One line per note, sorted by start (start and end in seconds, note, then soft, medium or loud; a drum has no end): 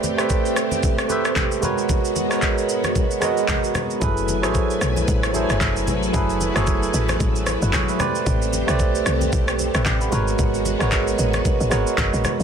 0.00 0.17 A3 loud
0.00 1.61 A3 medium
0.00 1.61 C4 medium
0.00 0.18 G4 medium
0.00 1.61 G4 medium
0.00 0.19 B4 medium
0.00 0.20 C5 medium
0.00 1.65 D5 loud
0.00 high conga medium
0.00 shaker medium
0.17 0.91 A3 medium
0.17 0.92 G4 medium
0.17 0.92 B4 medium
0.17 0.93 C5 medium
0.17 0.93 E5 medium
0.17 cross-stick loud
0.17 shaker medium
0.30 kick medium
0.30 shaker medium
0.46 shaker medium
0.56 cross-stick loud
0.56 shaker loud
0.71 high conga medium
0.71 shaker medium
0.83 kick loud
0.83 low conga medium
0.83 shaker medium
0.99 cross-stick loud
0.99 shaker soft
1.08 1.62 A3 medium
1.08 1.62 G4 medium
1.08 1.63 B4 medium
1.08 1.63 C5 medium
1.08 high conga medium
1.08 shaker medium
1.12 1.64 E5 medium
1.25 cross-stick medium
1.25 shaker medium
1.36 kick medium
1.36 clap loud
1.36 high conga medium
1.36 low conga medium
1.36 shaker medium
1.52 shaker medium
1.61 2.15 G#3 medium
1.61 3.99 G#3 medium
1.61 3.99 B3 medium
1.61 2.15 F#4 medium
1.61 3.99 F#4 medium
1.61 2.16 A#4 medium
1.61 2.16 B4 medium
1.61 2.17 C#5 loud
1.61 high conga medium
1.61 low conga medium
1.61 shaker medium
1.78 shaker soft
1.89 kick loud
1.89 low conga medium
1.89 shaker medium
2.05 shaker medium
2.16 high conga medium
2.16 shaker medium
2.29 3.04 G#3 medium
2.29 3.04 F#4 medium
2.29 3.05 A#4 medium
2.29 3.05 B4 medium
2.29 cross-stick loud
2.29 shaker medium
2.33 3.06 C#5 medium
2.42 kick medium
2.42 clap medium
2.42 shaker medium
2.58 shaker medium
2.69 shaker loud
2.84 cross-stick loud
2.84 high conga medium
2.84 shaker medium
2.95 kick loud
2.95 low conga medium
2.95 shaker medium
3.11 shaker soft
3.20 3.87 G#3 medium
3.20 3.87 F#4 medium
3.20 3.88 A#4 medium
3.20 3.88 B4 medium
3.20 cross-stick medium
3.20 high conga medium
3.20 shaker medium
3.24 3.89 D#5 loud
3.37 shaker medium
3.48 kick medium
3.48 clap loud
3.48 high conga medium
3.48 low conga medium
3.48 shaker medium
3.64 shaker medium
3.75 cross-stick medium
3.75 high conga medium
3.75 low conga medium
3.75 shaker medium
3.90 shaker soft
4.00 4.45 F#1 loud
4.00 4.33 F#3 medium
4.00 7.96 F#3 medium
4.00 7.96 A3 medium
4.00 4.34 E4 medium
4.00 7.96 E4 medium
4.00 4.34 G#4 medium
4.00 4.35 A4 medium
4.00 7.96 B4 medium
4.00 7.96 G#5 medium
4.00 kick loud
4.00 low conga medium
4.00 shaker medium
4.04 4.35 B4 medium
4.17 shaker medium
4.28 high conga medium
4.28 shaker medium
4.42 4.76 A1 medium
4.42 5.16 F#3 medium
4.42 5.17 E4 medium
4.42 5.17 G#4 medium
4.42 5.18 A4 medium
4.42 cross-stick loud
4.42 shaker medium
4.46 4.50 C5 medium
4.52 5.21 C#5 medium
4.52 kick medium
4.52 shaker medium
4.70 shaker medium
4.81 5.04 B1 medium
4.81 cross-stick loud
4.81 shaker loud
4.96 high conga medium
4.96 shaker medium
5.08 5.45 A1 loud
5.08 kick loud
5.08 low conga medium
5.08 shaker medium
5.23 cross-stick loud
5.23 shaker soft
5.33 5.99 F#3 medium
5.33 5.99 E4 medium
5.33 6.00 G#4 medium
5.33 6.00 A4 medium
5.33 high conga medium
5.33 shaker medium
5.37 5.43 C5 medium
5.43 6.04 C#5 medium
5.50 5.60 F#1 medium
5.50 cross-stick medium
5.50 shaker medium
5.61 5.89 F#1 loud
5.61 kick medium
5.61 clap loud
5.61 high conga medium
5.61 low conga medium
5.61 shaker medium
5.76 shaker medium
5.87 6.11 A1 loud
5.87 high conga medium
5.87 low conga medium
5.87 shaker medium
6.03 shaker soft
6.12 6.51 F#1 loud
6.12 6.46 F#3 medium
6.12 6.46 E4 medium
6.12 6.47 G#4 medium
6.12 6.47 A4 medium
6.12 6.48 B4 medium
6.12 kick loud
6.12 low conga medium
6.12 shaker medium
6.30 shaker medium
6.41 high conga medium
6.41 shaker medium
6.54 6.89 F#1 medium
6.54 7.29 F#3 medium
6.54 7.29 E4 medium
6.54 7.30 G#4 medium
6.54 7.30 A4 medium
6.54 cross-stick loud
6.54 shaker medium
6.58 7.31 C#5 medium
6.67 kick medium
6.67 shaker medium
6.83 shaker medium
6.94 7.17 A1 medium
6.94 shaker loud
7.09 cross-stick loud
7.09 high conga medium
7.09 shaker medium
7.20 7.57 A1 medium
7.20 kick loud
7.20 low conga medium
7.20 shaker medium
7.36 shaker soft
7.46 cross-stick medium
7.46 high conga medium
7.46 shaker medium
7.62 7.72 F#1 loud
7.62 7.73 F#4 medium
7.62 7.73 B4 medium
7.62 shaker medium
7.73 7.88 G#4 medium
7.73 7.88 C#5 medium
7.73 kick medium
7.73 clap loud
7.73 high conga medium
7.73 low conga medium
7.73 shaker medium
7.89 7.99 B4 medium
7.89 8.14 E5 medium
7.89 shaker medium
7.98 8.52 A3 medium
7.98 10.10 A3 medium
7.98 10.10 C4 medium
7.98 8.53 G4 medium
7.98 10.10 G4 medium
7.98 8.53 B4 medium
7.98 8.54 C5 medium
7.98 8.54 D5 loud
7.98 cross-stick medium
7.98 high conga medium
7.98 low conga medium
7.98 shaker medium
8.15 shaker soft
8.26 8.63 A1 loud
8.26 kick loud
8.26 low conga medium
8.26 shaker medium
8.42 shaker medium
8.53 high conga medium
8.53 shaker medium
8.67 9.01 B1 medium
8.67 9.41 A3 medium
8.67 9.41 G4 medium
8.67 9.42 B4 medium
8.67 9.42 C5 medium
8.67 9.43 D5 medium
8.67 cross-stick medium
8.67 shaker medium
8.79 kick medium
8.79 shaker medium
8.95 shaker medium
9.06 9.29 C2 medium
9.06 cross-stick loud
9.06 shaker loud
9.21 high conga medium
9.21 shaker medium
9.33 9.69 B1 medium
9.33 kick loud
9.33 low conga medium
9.33 shaker medium
9.48 cross-stick loud
9.48 shaker soft
9.59 high conga medium
9.59 shaker medium
9.74 9.84 A1 medium
9.74 9.86 B4 medium
9.74 9.85 E5 medium
9.74 cross-stick loud
9.74 shaker medium
9.85 10.09 A1 loud
9.85 10.01 D5 medium
9.85 10.00 G5 medium
9.85 kick medium
9.85 clap loud
9.85 high conga medium
9.85 low conga medium
9.85 shaker medium
10.01 10.27 F#5 medium
10.01 10.26 B5 medium
10.01 shaker medium
10.10 10.35 G#1 loud
10.10 10.64 G#3 loud
10.10 12.43 G#3 medium
10.10 12.43 B3 medium
10.10 10.65 F#4 medium
10.10 12.43 F#4 medium
10.10 10.65 A#4 medium
10.10 10.66 B4 medium
10.10 high conga medium
10.10 low conga medium
10.10 shaker medium
10.14 10.66 C#5 loud
10.28 shaker soft
10.39 10.75 G#1 loud
10.39 kick loud
10.39 low conga medium
10.39 shaker medium
10.54 shaker medium
10.66 high conga medium
10.66 shaker medium
10.79 11.14 G#1 medium
10.79 11.53 G#3 medium
10.79 11.54 F#4 medium
10.79 11.54 A#4 medium
10.79 11.55 B4 medium
10.79 cross-stick loud
10.79 shaker medium
10.83 11.55 C#5 loud
10.92 kick medium
10.92 clap medium
10.92 shaker medium
11.08 shaker medium
11.18 11.42 A1 medium
11.18 shaker loud
11.33 cross-stick medium
11.33 high conga medium
11.33 shaker medium
11.45 kick loud
11.45 low conga medium
11.45 shaker medium
11.60 11.70 A1 loud
11.60 shaker soft
11.70 11.85 G#1 medium
11.70 12.36 G#3 medium
11.70 12.37 F#4 medium
11.70 12.37 A#4 medium
11.70 12.38 B4 medium
11.70 12.38 C#5 medium
11.70 11.96 D#5 medium
11.70 cross-stick medium
11.70 shaker medium
11.87 shaker medium
11.98 12.11 F#1 medium
11.98 12.43 A#5 medium
11.98 kick loud
11.98 clap loud
11.98 high conga medium
11.98 low conga medium
11.98 shaker medium
12.14 12.23 A1 medium
12.14 shaker medium
12.25 cross-stick medium
12.25 high conga medium
12.25 low conga medium
12.25 shaker medium
12.40 12.43 G#1 medium
12.40 shaker soft